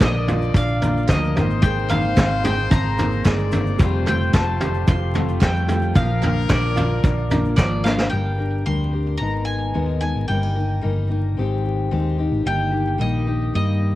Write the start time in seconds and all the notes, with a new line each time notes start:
Already playing: F3 A#3 D5
0.00 A#1 D3 A#3 F4 A#4 D#5, kick, snare, clap, floor tom, shaker
0.28 F4, floor tom, shaker
0.42 shaker
0.54 A#1 D4 F5, kick, floor tom, shaker
0.81 A#3 D4 F4 A#4, floor tom, shaker
0.97 shaker
1.08 D2 F3 A#3 D4 F4 A#4 D#5, kick, snare, clap, floor tom, shaker
1.24 shaker
1.35 G#1 A#3 C4 D#4 A#4 C5, floor tom, shaker
1.50 shaker
1.62 G#3 C4 D#4 A#4 G5, kick, floor tom, shaker
1.89 A#3 C4 D#4 A#4 F5, clap, floor tom, shaker
2.16 G#1 G#3 C4 D#4 A#4, kick, snare, clap, floor tom, shaker
2.44 G#4 G5, floor tom, shaker
2.58 shaker
2.70 G#1 C4 A#5, kick, floor tom, shaker
2.97 A#3 C4 D#4 A#4, floor tom, shaker
3.12 shaker
3.24 G1 G#3 C4 D#4 A#4 D5, kick, snare, clap, floor tom, shaker
3.39 shaker
3.52 A#3 C4 D#4 A#4, floor tom, shaker
3.67 shaker
3.78 F1 F2 F3 G3 A3 C4 F4 G4 C5, kick, floor tom, shaker
4.06 A3 C4 F4 G4 G5, clap, floor tom, shaker
4.33 F1 A3 C4 F4 G4 A5, kick, snare, clap, floor tom, shaker
4.60 G4, floor tom, shaker
4.74 shaker
4.87 F1 F4 C6, kick, floor tom, shaker
5.14 A3 C4 F4 G4, floor tom, shaker
5.29 shaker
5.41 F2 G3 A3 C4 F4 G4 G5, kick, snare, clap, floor tom, shaker
5.56 shaker
5.67 A3 C4 F4 G4, floor tom, shaker
5.82 shaker
5.94 A#1 A#2 F3 A#3 D4 F4 A#4 F5, kick, floor tom, shaker
6.21 A#3 D4 F4 A#4, clap, floor tom, shaker
6.49 A#1 A#3 D4 F4 A#4 D5, kick, snare, clap, floor tom, shaker
6.76 F4, floor tom, shaker
7.04 A#1 D4, kick, floor tom, shaker
7.30 A#3 D4 F4 A#4, floor tom, shaker
7.45 shaker
7.57 G#1 F3 A#3 D4 F4 A#4 D5, kick, snare, clap, floor tom, shaker
7.84 A#3 D4 F4 A#4 F5, snare, shaker
7.98 snare
8.10 G1 G2 G3 D4 G4 A#4 G5
8.38 D4 G4 A#4
8.66 D2 F2 G3 D4 G4 A#4 C6
8.93 G2 D4 G4 A#4
9.18 G#1 G#2 D#3 G#3 B3 D#4 A#5
9.22 D#4 A#4
9.45 A#4 G#5
9.74 D#2 G#2 D#3 G#3 B3 D#4 A#4
10.01 G#3 B3 D#4 A#4 G#5
10.15 G#1
10.28 G1 G2 G3 A#3 C4 D#4 A#4 G5
10.43 D#4
10.55 A#3 D#4 A#4
10.81 G1 F2 G3 A#3 D#4 A#4
11.09 G2 A#3 D#4 A#4
11.37 G#1 G#2 D#3 G#3 C4 D#4 G4
11.41 D#4 G4
11.66 G4
11.91 D#2 D#3 G#3 C4 D#4 G4
12.18 C4 D#4 G4
12.31 G#1
12.45 G1 G2 G3 A#3 D#4 G4 G5
12.71 A#3 D#4 G4
12.98 A#1 D#3 G3 A#3 D#4 G4 D#5
13.27 A#3 D#4 G4
13.54 G2 G3 A#3 D#4 G4 D#5
13.83 D#4